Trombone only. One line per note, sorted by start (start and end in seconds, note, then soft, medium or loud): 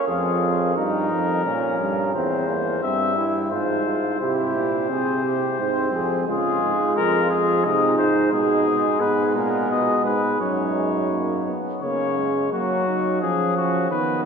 0.08 0.76 F4 medium
0.76 1.44 D#4 medium
1.45 2.13 C#4 medium
2.15 2.48 C4 medium
2.49 2.83 A#3 medium
2.83 3.16 C4 medium
3.17 3.53 E4 medium
3.51 3.85 F4 medium
3.86 4.20 F4 medium
4.21 4.91 E4 medium
4.90 5.42 C4 medium
5.59 6.27 C4 medium
6.28 7.61 G#3 medium
7.64 8.31 G#3 medium
8.33 10.36 G#3 medium
10.40 10.75 F#3 medium
10.76 11.10 G#3 medium
11.11 11.46 A#3 medium
11.47 11.81 B3 medium
11.83 12.19 A#3 medium
12.17 12.52 G#3 medium